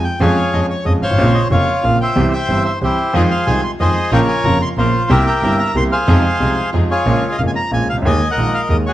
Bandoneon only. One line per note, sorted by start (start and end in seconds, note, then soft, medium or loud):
0.04 0.19 G5 medium
0.20 0.66 G#4 medium
0.20 0.66 C#5 medium
0.20 0.54 F5 medium
0.53 0.61 D#5 medium
0.70 0.85 C#5 medium
0.85 0.93 D#5 medium
1.02 1.48 C5 medium
1.02 1.48 C#5 medium
1.02 1.32 F5 medium
1.35 1.42 D#5 medium
1.51 1.97 F4 medium
1.51 1.85 C#5 medium
1.84 1.99 F5 medium
2.01 2.33 C5 medium
2.01 2.33 E5 medium
2.01 2.31 G5 medium
2.33 2.79 C5 medium
2.33 2.64 E5 medium
2.33 2.63 G5 medium
2.65 2.73 E5 medium
2.83 3.13 E4 medium
2.83 3.13 G4 medium
2.83 3.16 C5 medium
3.15 3.61 G#4 medium
3.15 3.61 C5 medium
3.15 3.22 D#5 medium
3.31 3.46 F5 medium
3.47 3.64 G#5 medium
3.64 3.71 C6 medium
3.80 4.11 G#4 medium
3.80 4.11 C5 medium
3.80 4.13 D#5 medium
4.13 4.58 A#4 medium
4.13 4.58 C#5 medium
4.13 4.20 G5 medium
4.28 4.45 G#5 medium
4.45 4.61 A#5 medium
4.62 4.69 C6 medium
4.78 5.09 F4 medium
4.78 5.11 C5 medium
5.10 5.56 G4 medium
5.10 5.26 A#4 medium
5.10 5.26 E5 medium
5.26 5.72 A#4 medium
5.26 5.73 E5 medium
5.26 5.60 G5 medium
5.59 5.76 A#5 medium
5.77 5.84 C6 medium
5.92 6.70 G#4 medium
5.92 6.70 C5 medium
5.92 6.70 F5 medium
6.91 7.37 F4 medium
6.91 7.37 G#4 medium
6.91 7.29 C#5 medium
7.32 7.40 D#5 medium
7.38 7.42 F5 medium
7.47 7.51 G#5 medium
7.56 7.71 A#5 medium
7.74 7.88 G#5 medium
7.89 7.97 F5 medium
8.06 8.31 D#5 medium
8.06 8.28 G#5 medium
8.31 8.76 A#4 medium
8.31 8.68 D#5 medium
8.31 8.53 F#5 medium
8.54 8.61 F5 medium
8.70 8.77 D#5 medium
8.86 8.93 F#4 medium
8.86 8.93 G#4 medium
8.86 8.93 C#5 medium